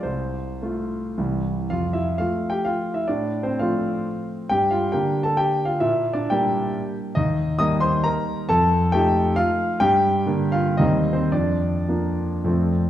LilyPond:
<<
  \new Staff \with { instrumentName = "Grand piano" } { \time 3/4 \key f \major \tempo 4 = 131 c''2 r4 | <f' f''>8 <e' e''>8 \tuplet 3/2 { <f' f''>4 <g' g''>8 <f' f''>4 <e' e''>8 } | \tuplet 3/2 { <d' d''>4 <c' c''>8 } <f' f''>4. r8 | <g' g''>8 <f' f''>8 \tuplet 3/2 { <g' g''>4 <a' a''>8 <g' g''>4 <f' f''>8 } |
\tuplet 3/2 { <e' e''>4 <d' d''>8 } <g' g''>4. r8 | \key bes \major <ees' ees''>4 <ees'' ees'''>8 <c'' c'''>8 <bes' bes''>4 | <a' a''>4 <g' g''>4 <f' f''>4 | <g' g''>4. <f' f''>8 \tuplet 3/2 { <ees' ees''>4 <c' c''>8 } |
<d' d''>2~ <d' d''>8 r8 | }
  \new Staff \with { instrumentName = "Grand piano" } { \clef bass \time 3/4 \key f \major c,4 <a f'>4 <c, e g g'>4 | f,4 <f a>2 | a,4 <f a c'>2 | g,4 <d bes d'>2 |
bes,4 <g bes d'>2 | \key bes \major ees,4 <g bes ees'>2 | f,4 <f a ees'>2 | g,4 <d bes d'>4 <ees, g bes c'>4 |
f,4 <f bes d'>4 <f, f a c'>4 | }
>>